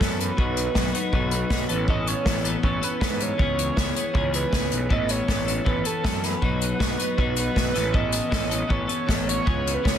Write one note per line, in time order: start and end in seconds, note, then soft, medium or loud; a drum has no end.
0.00 0.30 F#2 medium
0.00 0.37 E3 medium
0.00 0.38 B3 medium
0.00 0.38 C#4 medium
0.00 0.21 A4 medium
0.00 0.38 A4 medium
0.00 kick loud
0.00 snare loud
0.20 1.30 B4 medium
0.20 closed hi-hat medium
0.37 0.67 B1 medium
0.37 0.74 F#3 medium
0.37 0.75 B3 medium
0.37 0.75 D#4 medium
0.37 0.76 F#4 medium
0.37 kick loud
0.57 closed hi-hat medium
0.75 0.90 B1 medium
0.75 1.11 F#3 medium
0.75 0.96 B3 medium
0.75 0.94 D#4 medium
0.75 0.92 F#4 medium
0.75 kick loud
0.75 snare loud
0.93 1.13 B3 medium
0.93 1.13 D#4 medium
0.93 1.14 F#4 medium
0.93 closed hi-hat medium
1.12 1.42 B1 medium
1.12 1.49 F#3 medium
1.12 1.33 B3 medium
1.12 1.31 D#4 medium
1.12 1.30 F#4 loud
1.12 kick loud
1.31 1.50 B3 soft
1.31 1.51 D#4 medium
1.31 1.51 F#4 medium
1.31 1.84 B4 medium
1.31 closed hi-hat medium
1.50 1.65 B1 medium
1.50 1.68 F#3 medium
1.50 1.70 B3 medium
1.50 1.69 D#4 medium
1.50 1.68 F#4 medium
1.50 kick loud
1.50 snare medium
1.69 2.14 A1 medium
1.69 1.88 E3 medium
1.69 1.88 B3 medium
1.69 1.89 C#4 medium
1.69 1.89 A4 medium
1.69 closed hi-hat medium
1.88 2.25 E3 medium
1.88 2.26 B3 medium
1.88 2.27 C#4 loud
1.88 2.26 A4 medium
1.88 2.09 D#5 loud
1.88 kick loud
2.07 2.45 C#5 medium
2.07 closed hi-hat medium
2.25 2.55 A1 medium
2.25 2.63 E3 medium
2.25 2.47 B3 medium
2.25 2.45 C#4 medium
2.25 2.43 A4 medium
2.25 kick loud
2.25 snare loud
2.44 2.63 B3 medium
2.44 2.64 C#4 medium
2.44 2.64 A4 medium
2.44 closed hi-hat medium
2.63 2.78 A1 medium
2.63 3.00 E3 medium
2.63 2.84 B3 medium
2.63 2.83 C#4 medium
2.63 2.80 A4 medium
2.63 2.82 C#5 medium
2.63 kick loud
2.81 3.01 B3 soft
2.81 3.02 C#4 medium
2.81 3.02 A4 medium
2.81 3.24 B4 medium
2.81 closed hi-hat medium
3.00 3.31 G#2 medium
3.00 3.38 E3 medium
3.00 3.38 B3 medium
3.00 3.39 C#4 medium
3.00 3.39 A4 medium
3.00 kick loud
3.00 snare loud
3.20 4.35 C#5 loud
3.20 closed hi-hat medium
3.38 3.69 C#2 medium
3.38 3.76 E3 medium
3.38 3.76 B3 medium
3.38 3.78 C#4 loud
3.38 3.77 G#4 medium
3.38 kick loud
3.59 closed hi-hat medium
3.76 3.92 C#2 medium
3.76 4.13 E3 medium
3.76 3.97 B3 medium
3.76 3.96 C#4 medium
3.76 3.94 G#4 medium
3.76 kick loud
3.76 snare loud
3.95 4.15 B3 soft
3.95 4.14 C#4 medium
3.95 4.15 G#4 medium
3.95 closed hi-hat medium
4.14 4.44 C#2 medium
4.14 4.50 E3 medium
4.14 4.35 B3 medium
4.14 4.33 C#4 medium
4.14 4.31 G#4 medium
4.14 kick loud
4.33 4.52 B3 soft
4.33 4.52 C#4 medium
4.33 4.53 G#4 medium
4.33 4.88 B4 medium
4.33 closed hi-hat medium
4.51 4.70 C#2 medium
4.51 4.88 E3 medium
4.51 4.90 B3 medium
4.51 4.90 C#4 medium
4.51 4.90 G#4 medium
4.51 kick loud
4.51 snare loud
4.71 4.89 B1 medium
4.71 closed hi-hat medium
4.89 5.20 A1 medium
4.89 5.27 E3 medium
4.89 5.29 B3 medium
4.89 5.28 C#4 medium
4.89 5.29 A4 medium
4.89 5.12 D#5 loud
4.89 kick loud
5.09 5.48 C#5 loud
5.09 closed hi-hat medium
5.28 5.58 A1 medium
5.28 5.63 E3 medium
5.28 5.48 B3 medium
5.28 5.46 C#4 medium
5.28 5.45 A4 medium
5.28 kick loud
5.28 snare loud
5.47 5.65 B3 medium
5.47 5.66 C#4 medium
5.47 5.66 A4 medium
5.47 closed hi-hat medium
5.65 5.81 A1 medium
5.65 6.02 E3 medium
5.65 5.87 B3 medium
5.65 5.85 C#4 medium
5.65 5.83 A4 medium
5.65 5.85 B4 medium
5.65 kick loud
5.84 6.04 B3 medium
5.84 6.04 C#4 medium
5.84 6.05 A4 medium
5.84 6.26 A4 medium
5.84 closed hi-hat medium
6.04 6.34 F#2 medium
6.04 6.41 E3 medium
6.04 6.43 B3 medium
6.04 6.42 C#4 medium
6.04 6.42 A4 medium
6.04 kick loud
6.04 snare loud
6.24 7.38 B4 loud
6.24 snare soft
6.24 closed hi-hat medium
6.42 6.72 B1 medium
6.42 6.78 F#3 medium
6.42 6.80 B3 medium
6.42 6.80 D#4 medium
6.42 6.81 F#4 medium
6.42 kick loud
6.61 closed hi-hat medium
6.79 6.95 B1 medium
6.79 7.16 F#3 medium
6.79 7.01 B3 medium
6.79 6.98 D#4 medium
6.79 6.97 F#4 medium
6.79 kick loud
6.79 snare loud
6.98 7.18 B3 medium
6.98 7.18 D#4 medium
6.98 7.18 F#4 medium
6.98 closed hi-hat medium
7.18 7.48 B1 medium
7.18 7.54 F#3 medium
7.18 7.39 B3 medium
7.18 7.37 D#4 loud
7.18 7.35 F#4 medium
7.18 kick loud
7.36 7.55 B3 medium
7.36 7.56 D#4 medium
7.36 7.56 F#4 medium
7.36 7.96 B4 loud
7.36 closed hi-hat medium
7.55 7.71 B1 medium
7.55 7.74 F#3 medium
7.55 7.75 B3 medium
7.55 7.74 D#4 medium
7.55 7.74 F#4 medium
7.55 kick loud
7.55 snare medium
7.74 8.20 A1 medium
7.74 7.92 E3 medium
7.74 7.93 B3 medium
7.74 7.93 C#4 medium
7.74 7.93 A4 medium
7.74 snare soft
7.74 closed hi-hat medium
7.92 8.30 E3 medium
7.92 8.31 B3 medium
7.92 8.31 C#4 medium
7.92 8.32 A4 medium
7.92 8.73 D#5 loud
7.92 kick loud
8.12 closed hi-hat medium
8.30 8.62 A1 medium
8.30 8.67 E3 medium
8.30 8.52 B3 medium
8.30 8.50 C#4 medium
8.30 8.48 A4 medium
8.30 kick loud
8.30 snare loud
8.50 8.69 B3 soft
8.50 8.68 C#4 medium
8.50 8.69 A4 medium
8.50 closed hi-hat medium
8.68 8.85 A1 loud
8.68 9.06 E3 medium
8.68 8.89 B3 medium
8.68 8.88 C#4 medium
8.68 8.86 A4 medium
8.68 9.28 C#5 loud
8.68 kick loud
8.87 9.07 B3 medium
8.87 9.07 C#4 medium
8.87 9.08 A4 medium
8.87 closed hi-hat medium
9.07 9.38 A1 medium
9.07 9.45 E3 medium
9.07 9.46 B3 medium
9.07 9.45 C#4 medium
9.07 9.46 A4 medium
9.07 kick loud
9.07 snare loud
9.29 9.76 C#5 loud
9.29 closed hi-hat medium
9.45 9.76 C#2 medium
9.45 9.82 E3 medium
9.45 9.83 B3 medium
9.45 9.83 C#4 loud
9.45 9.85 G#4 medium
9.45 kick loud
9.67 closed hi-hat medium
9.74 9.87 B4 medium
9.83 9.98 C#2 medium
9.83 9.98 E3 medium
9.83 9.98 B3 medium
9.83 9.98 C#4 medium
9.83 9.98 G#4 medium
9.83 9.98 C#5 loud
9.83 kick loud
9.83 snare loud